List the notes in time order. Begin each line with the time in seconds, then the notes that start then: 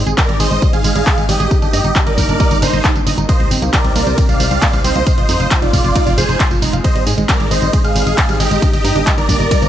Already playing: G#3 C4 D#4
0.07 G#1 G#4, closed hi-hat, tambourine
0.18 G#3 A#4 D5, kick, clap, closed hi-hat, tambourine
0.29 G#1 G3, closed hi-hat
0.40 G#1 G#4 C5 D#5, open hi-hat, tambourine
0.51 G#1 G#3, closed hi-hat, tambourine
0.62 G3, kick, closed hi-hat, tambourine
0.73 G#1 G#4 F5, closed hi-hat, tambourine
0.84 G#1 G#3, open hi-hat, tambourine
0.95 G#1 G3 G#4 F5, closed hi-hat, tambourine
1.07 G#4, kick, clap, closed hi-hat, tambourine
1.18 G#1 G#3, closed hi-hat, tambourine
1.29 G#1 G3 G4 D#5, open hi-hat, tambourine
1.40 G#1 G#4, closed hi-hat, tambourine
1.51 G3 A#3 D#4, kick, closed hi-hat, tambourine
1.62 G1 D4 G4 D#5, closed hi-hat, tambourine
1.73 G2 D#5, open hi-hat, tambourine
1.84 G1 D#4, closed hi-hat, tambourine
1.96 D4, kick, clap, closed hi-hat, tambourine
2.07 G1 A#4 D5 D#5, closed hi-hat
2.18 G1 D#4, kick, open hi-hat, tambourine
2.29 G1 D4 A#4 D5, closed hi-hat, tambourine
2.40 D#5, kick, closed hi-hat, tambourine
2.51 G1 D#4, closed hi-hat, tambourine
2.62 G1 D4 D#4 C5, open hi-hat, tambourine
2.73 G1 D#5, closed hi-hat, tambourine
2.84 D#4, kick, clap, closed hi-hat, tambourine
2.96 G1 D4, closed hi-hat, tambourine
3.07 G1 D#5, open hi-hat, tambourine
3.18 G1 D#4, closed hi-hat, tambourine
3.29 C3 A#3 C4 D#4 G4 C5 D#5, kick, closed hi-hat, ride, tambourine
3.40 C2 C5, closed hi-hat
3.51 G1 C4, open hi-hat, tambourine
3.62 C2 A#3, closed hi-hat, tambourine
3.73 A#4 C5 D5, kick, clap, closed hi-hat, ride, tambourine
3.84 C2 C4, closed hi-hat
3.95 C2 A#3 A#4 D5, open hi-hat, tambourine
4.07 C2 C5, closed hi-hat, tambourine
4.18 C4, kick, closed hi-hat, ride, tambourine
4.29 C2 A#3 D5 F5, closed hi-hat, tambourine
4.40 C2 C5, open hi-hat, tambourine
4.51 C2 C4 D5 F5, closed hi-hat, tambourine
4.62 A#3, kick, clap, closed hi-hat, ride, tambourine
4.73 C2 C5, closed hi-hat, tambourine
4.84 C2 C4 C5 D#5, open hi-hat, tambourine
4.95 C2 A#3, closed hi-hat, tambourine
5.07 G#3 C4 F4 F5, kick, closed hi-hat, ride, tambourine
5.18 F1 F4 C5 D#5, closed hi-hat
5.29 F2 D#4, open hi-hat, tambourine
5.40 F1 F5, closed hi-hat, tambourine
5.51 F4, kick, clap, closed hi-hat, ride, tambourine
5.62 F1 D#4 F4 D5, closed hi-hat
5.73 F1 F5, kick, open hi-hat, tambourine
5.84 F1 F4 D5, closed hi-hat, tambourine
5.96 D#4, kick, closed hi-hat, ride, tambourine
6.07 F1 F5, closed hi-hat, tambourine
6.18 F1 F4 G#4 C5, open hi-hat, tambourine
6.29 F1 D#4, closed hi-hat, tambourine
6.40 F5, kick, clap, closed hi-hat, ride, tambourine
6.51 F1 F4, closed hi-hat, tambourine
6.62 F1 D#4, open hi-hat, tambourine
6.73 F1 F5, closed hi-hat, tambourine
6.84 G#3 D#4 C5 D#5, kick, closed hi-hat, ride, tambourine
6.95 G#1 G3, closed hi-hat
7.07 G#2 G#4, open hi-hat, tambourine
7.18 G#1 G#3, closed hi-hat, tambourine
7.29 A#4 D5, kick, clap, closed hi-hat, ride, tambourine
7.40 G#1 G#4, closed hi-hat
7.51 G#1 G#3 C5 D#5, open hi-hat, tambourine
7.62 G#1 G3, closed hi-hat, tambourine
7.73 G#4, kick, closed hi-hat, ride, tambourine
7.84 G#1 G#3 G#4 F5, closed hi-hat, tambourine
7.95 G#1 G3, open hi-hat, tambourine
8.06 G#1 G#4 F5, closed hi-hat, tambourine
8.18 G#3, kick, clap, closed hi-hat, ride, tambourine
8.29 G#1 G3, closed hi-hat, tambourine
8.40 G#1 G4 G#4 D#5, open hi-hat, tambourine
8.51 G#1 G#3, closed hi-hat, tambourine
8.62 G3 A#3 D4, kick, closed hi-hat, ride, tambourine
8.73 G1 G4 D#5, closed hi-hat, tambourine
8.84 G2 D#4, open hi-hat, tambourine
8.95 G1 D4, closed hi-hat, tambourine
9.07 D#5, kick, clap, closed hi-hat, ride, tambourine
9.18 G1 D#4 A#4 D5, closed hi-hat, tambourine
9.29 G1 D4, kick, open hi-hat, tambourine
9.40 G1 A#4 D5 D#5, closed hi-hat, tambourine
9.51 G3 D4, kick, closed hi-hat, ride, tambourine
9.62 G1 F3, closed hi-hat, tambourine